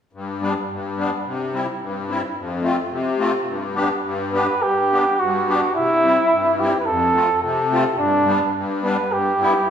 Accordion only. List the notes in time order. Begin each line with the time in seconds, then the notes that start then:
0.13 G2
0.41 G3 B3 D4
0.71 G2
0.97 G3 B3 D4
1.26 C3
1.53 G3 C4 E4
1.81 G2
2.09 G3 C4 E4
2.37 F2
2.63 A3 C4 F4
2.92 C3
3.18 A3 C4 F4
3.48 G2
3.75 B3 D4 G4
4.04 G2
4.33 B3 D4 G4
4.62 G2
4.91 B3 D4 G4
5.21 G2
5.48 B3 D4 G4
5.77 C3
6.04 G3 C4 E4
6.32 G2
6.60 G3 C4 E4
6.88 F2
7.14 A3 C4 F4
7.43 C3
7.71 A3 C4 F4
7.98 G2
8.25 G3 B3 D4
8.54 G2
8.83 G3 B3 D4
9.12 G2
9.40 G3 B3 E4